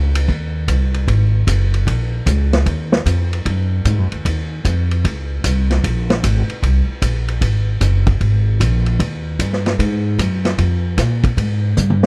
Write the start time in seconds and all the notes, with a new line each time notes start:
Already playing: C#2
0.15 ride
0.28 D#2, kick
0.68 C2, kick, hi-hat pedal, ride
0.94 ride
1.08 G#1, kick, ride
1.47 F#1, kick, hi-hat pedal, ride
1.74 ride
1.87 A#1, kick, ride
2.26 C#2, kick, hi-hat pedal, ride
2.53 snare, ride
2.66 D#2, kick, ride
2.92 snare
3.06 F2, kick, hi-hat pedal, ride
3.33 ride
3.45 F#2, kick, ride
3.85 G#2, kick, hi-hat pedal, ride
3.98 F#2
4.12 D#2, ride
4.25 D#2, kick, ride
4.65 F2, kick, hi-hat pedal, ride
4.91 ride
5.04 C#2, kick, ride
5.44 C2, kick, hi-hat pedal, ride
5.70 snare, ride
5.84 A#1, kick, ride
6.10 snare, ride
6.23 G#1, kick, hi-hat pedal, ride
6.48 muted upright bass stroke, ride
6.62 C2, kick, ride
6.87 muted upright bass stroke
7.02 A#1, kick, hi-hat pedal, ride
7.28 ride
7.41 G#1, kick, ride
7.81 F#1, kick, hi-hat pedal, ride
8.07 kick, ride
8.21 G#1, kick, ride
8.60 A#1, kick, hi-hat pedal, ride
8.86 ride
8.99 D#2, kick, ride
9.39 G2, kick, hi-hat pedal, ride
9.53 snare
9.66 snare, ride
9.79 G#2, kick, ride
10.18 F#2, kick, hi-hat pedal, ride
10.45 snare, ride
10.58 F2, kick, ride
10.97 A#2, kick, snare, hi-hat pedal, ride
11.24 kick, ride
11.37 G#2, kick, ride
11.77 G2, hi-hat pedal, high tom
11.90 high tom